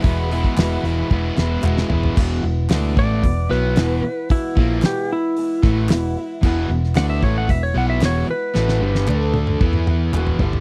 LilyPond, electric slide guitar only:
\new Staff \with { instrumentName = "Electric slide guitar" } { \time 4/4 \key e \major \tempo 4 = 113 e''2. r4 | \key e \mixolydian r4. d''4 b'4. | e'4 g'8 e'2~ e'8~ | e'8 r8 fis''16 e''16 cis''16 fis''16 e''16 cis''16 fis''16 e''16 cis''8 b'8~ |
b'4. r2 r8 | }